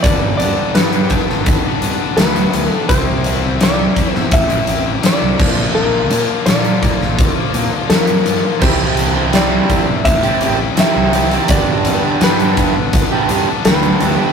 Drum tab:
CC |----------------|--------------x-|----------------|x---------------|
HH |x-x-xxx-x-x-xxx-|x-x-x-x-xxx-x---|--x-xxx-x-x-xxx-|--x-x-x-xxx-x-xx|
SD |----o--o----o---|----o--o----o---|----o--o----o---|----o-------o---|
BD |o-----o-o-------|o-----o-o-----o-|------o-o-------|o-----o-o-------|

CC |----------------|
HH |x-x-xxx-x-x-xxx-|
SD |----o-------o---|
BD |o-----o-o-------|